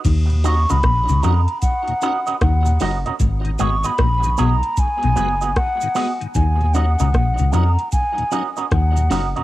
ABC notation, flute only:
X:1
M:4/4
L:1/16
Q:"Swing 16ths" 1/4=76
K:Ebm
V:1 name="Flute"
z2 d' c'3 b2 g4 g3 z | z2 d' c'3 b2 a4 g3 z | a2 g4 b2 a3 z g3 z |]